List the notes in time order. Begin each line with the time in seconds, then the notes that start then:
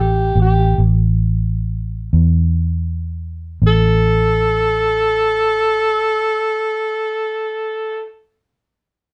Already playing: A1
0.00 G4
0.35 A1
0.41 G4
0.78 A1
2.13 E2
3.62 A1
3.67 A4